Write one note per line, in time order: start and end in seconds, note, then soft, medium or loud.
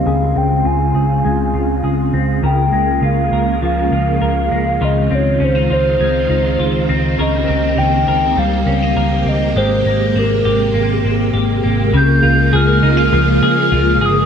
0.00 0.11 G3 medium
0.00 0.35 C4 medium
0.00 2.39 C4 medium
0.00 0.12 D#4 soft
0.00 0.39 F5 loud
0.05 0.32 C#2 medium
0.05 2.41 C#3 medium
0.05 2.42 C#3 medium
0.05 7.14 G#3 medium
0.05 2.41 F4 loud
0.05 0.94 G#4 medium
0.36 0.61 C#2 medium
0.36 2.12 C4 soft
0.36 0.68 G5 loud
0.65 0.91 C#2 medium
0.65 1.53 F4 medium
0.65 1.84 G#5 loud
0.94 1.20 C#2 medium
0.94 1.83 G#4 medium
1.25 1.51 C#2 medium
1.25 2.72 G#3 medium
1.53 1.80 C#2 medium
1.53 3.02 F4 soft
1.83 2.09 C#2 medium
1.83 2.43 G#4 medium
2.13 2.39 C#2 medium
2.13 2.49 C4 soft
2.42 2.68 C#2 medium
2.42 4.78 C#3 medium
2.42 4.80 C#3 medium
2.42 4.78 A#3 medium
2.42 4.78 F4 medium
2.42 3.32 A#4 medium
2.42 3.00 G5 medium
2.72 2.99 C#2 medium
2.72 4.51 G#3 soft
3.02 3.28 C#2 medium
3.02 3.92 F4 medium
3.02 3.59 F5 loud
3.31 3.58 C#2 medium
3.31 4.20 A#4 medium
3.61 3.88 C#2 medium
3.61 5.58 F3 medium
3.61 4.86 F5 loud
3.91 4.17 C#2 medium
3.91 4.82 F4 soft
4.21 4.47 C#2 medium
4.21 4.81 A#4 medium
4.51 4.77 C#2 medium
4.51 5.10 G#3 medium
4.81 5.07 C#2 medium
4.81 7.18 C#3 medium
4.81 9.53 D#3 medium
4.81 9.52 C4 medium
4.81 5.69 F4 medium
4.81 7.17 F4 medium
4.81 5.16 D#5 medium
5.11 5.37 C#2 medium
5.11 6.89 C4 soft
5.15 5.45 C#5 medium
5.40 5.66 C#2 medium
5.40 5.55 C#4 medium
5.44 5.72 C5 medium
5.55 6.28 D#4 soft
5.70 5.96 C#2 medium
5.70 6.58 F4 medium
5.70 6.86 C5 medium
5.99 6.25 C#2 medium
5.99 7.25 G#3 medium
6.29 6.55 C#2 medium
6.29 7.77 D#4 soft
6.58 6.85 C#2 medium
6.58 7.19 F4 medium
6.89 7.15 C#2 medium
6.89 7.48 C4 soft
7.18 7.44 C#2 medium
7.18 9.56 C#3 medium
7.18 11.90 A#3 medium
7.18 11.90 G4 loud
7.18 8.08 A#4 medium
7.18 7.80 D#5 loud
7.48 7.74 C#2 medium
7.48 9.26 C4 soft
7.77 8.04 C#2 medium
7.77 8.66 D#4 medium
7.77 8.40 G5 loud
8.06 8.33 C#2 medium
8.06 8.96 A#4 medium
8.36 8.63 C#2 medium
8.36 9.56 G3 medium
8.36 9.30 F5 loud
8.66 8.92 C#2 medium
8.66 8.82 C#4 medium
8.82 9.62 D#4 soft
8.96 9.22 C#2 medium
8.96 9.57 A#4 medium
9.25 9.52 C#2 medium
9.25 9.86 C4 soft
9.25 9.57 D#5 loud
9.55 9.81 G#1 medium
9.55 11.91 C3 medium
9.55 11.91 G#3 medium
9.55 13.06 G#3 medium
9.55 10.44 G4 medium
9.55 10.20 C5 medium
9.84 10.11 G#1 medium
9.84 10.74 A#3 soft
10.14 10.41 G#1 medium
10.14 11.03 C4 medium
10.19 11.06 A#4 medium
10.45 10.71 G#1 medium
10.45 11.32 G4 medium
10.73 11.00 G#1 medium
10.73 11.63 A#3 medium
11.03 11.30 G#1 medium
11.03 11.99 C4 soft
11.33 11.60 G#1 medium
11.33 11.99 G4 medium
11.63 11.90 G#1 medium
11.63 12.56 A#3 medium
11.93 12.19 C#2 loud
11.93 14.26 C#3 medium
11.93 14.26 G#3 medium
11.93 14.26 A#3 medium
11.93 14.26 F4 loud
11.93 12.57 G6 loud
12.23 12.49 C#2 loud
12.23 12.82 F4 medium
12.53 12.79 C#2 loud
12.53 13.42 G#4 medium
12.53 13.14 F6 loud
12.82 13.09 C#2 medium
12.82 12.97 D#4 medium
12.97 13.71 F4 medium
13.12 13.38 C#2 loud
13.12 14.26 F3 medium
13.12 14.07 F6 loud
13.42 13.73 C#3 medium
13.42 14.01 G#4 medium
13.71 14.01 C#2 loud
13.71 14.26 F4 medium
14.01 14.26 G1 medium
14.01 14.26 G#4 medium
14.05 14.26 D#6 loud